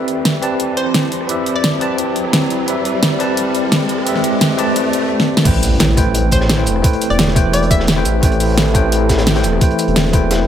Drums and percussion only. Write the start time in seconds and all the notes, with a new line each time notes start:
0.08 closed hi-hat
0.25 snare, closed hi-hat
0.43 closed hi-hat
0.60 closed hi-hat
0.77 closed hi-hat
0.86 cross-stick
0.94 snare, closed hi-hat
1.12 closed hi-hat
1.21 cross-stick
1.29 closed hi-hat
1.46 closed hi-hat
1.64 snare, closed hi-hat
1.81 closed hi-hat
1.98 closed hi-hat
2.16 closed hi-hat
2.25 cross-stick
2.33 snare, closed hi-hat
2.50 closed hi-hat
2.68 closed hi-hat
2.85 closed hi-hat
3.03 snare, closed hi-hat
3.20 closed hi-hat
3.37 closed hi-hat
3.55 closed hi-hat
3.64 cross-stick
3.72 snare, closed hi-hat
3.89 closed hi-hat
3.98 cross-stick
4.07 closed hi-hat
4.16 cross-stick, snare
4.24 closed hi-hat
4.41 snare, closed hi-hat
4.59 closed hi-hat
4.76 closed hi-hat
4.93 closed hi-hat
5.02 cross-stick
5.20 snare
5.37 snare
5.45 kick, closed hi-hat, crash
5.54 closed hi-hat
5.63 closed hi-hat, open hi-hat, shaker
5.80 snare, closed hi-hat
5.97 kick, closed hi-hat, shaker
6.14 closed hi-hat
6.31 kick, closed hi-hat, shaker
6.41 cross-stick, snare
6.49 snare, closed hi-hat
6.66 closed hi-hat, shaker
6.76 cross-stick
6.84 kick, closed hi-hat
6.93 closed hi-hat
7.02 closed hi-hat, shaker
7.11 closed hi-hat
7.19 snare, closed hi-hat
7.28 snare
7.36 kick, closed hi-hat, shaker
7.53 closed hi-hat
7.63 closed hi-hat
7.71 kick, closed hi-hat, shaker
7.80 cross-stick, snare
7.87 snare, closed hi-hat
7.97 snare
8.05 closed hi-hat, shaker
8.23 kick, closed hi-hat
8.32 closed hi-hat
8.40 closed hi-hat, open hi-hat, shaker
8.58 snare, closed hi-hat
8.75 kick, closed hi-hat, shaker
8.92 closed hi-hat
9.09 kick, snare, closed hi-hat, shaker
9.18 cross-stick, snare, closed hi-hat
9.26 snare, closed hi-hat
9.35 snare, closed hi-hat
9.43 closed hi-hat, shaker
9.53 cross-stick
9.61 kick, closed hi-hat
9.71 closed hi-hat
9.79 closed hi-hat, shaker
9.88 closed hi-hat
9.96 snare, closed hi-hat
10.04 snare
10.13 kick, closed hi-hat, shaker
10.31 snare, closed hi-hat